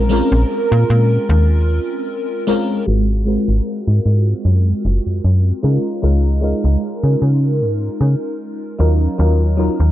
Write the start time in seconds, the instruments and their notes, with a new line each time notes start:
Already playing: fm bass A#1, soft synth lead A#4
0.09 fm electric piano G#3 C4 C#4 F4 A#4
0.32 fm bass A#1
0.72 fm bass A#2
0.90 fm bass A#2
1.29 fm bass D#2
2.47 fm electric piano G#3 C4 C#4 F4 A#4
2.86 fm bass G#1, fm electric piano G#3 C4 F4 F#4
3.25 fm electric piano G#3 C4 F4 F#4 A#4
3.48 fm bass G#1
3.88 fm bass G#2
4.06 fm bass G#2
4.45 fm bass F#2
4.85 fm bass F#1
5.06 fm bass F#2
5.24 fm bass F#2
5.63 fm bass C#3, fm electric piano G#3 C#4 D#4 F4 A#4
6.02 fm bass C#2, fm electric piano G#3 C#4 D#4 F4 A#4
6.41 fm electric piano G#3 C#4 D#4 F4 A#4
6.64 fm bass C#2
7.03 fm bass C#3
7.22 fm bass C#3
7.61 fm bass G#2
8.01 fm bass C#3
8.78 fm bass D#2, fm electric piano F#3 C#4 D#4 F4 A#4
9.18 fm bass D#2, fm electric piano F#3 C#4 D#4 F4 A#4
9.57 fm electric piano F#3 C#4 D#4 F4 A#4
9.80 fm bass D#2